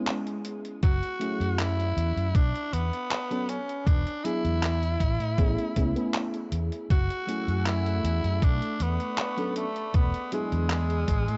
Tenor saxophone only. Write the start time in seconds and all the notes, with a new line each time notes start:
Already playing: G#3
0.83 F#4
1.59 E4
2.35 D4
2.73 B3
3.49 C#4
3.87 D4
4.24 E4
6.91 F#4
7.67 E4
8.44 D4
8.82 B3
9.57 A3
9.96 B3
10.34 G#3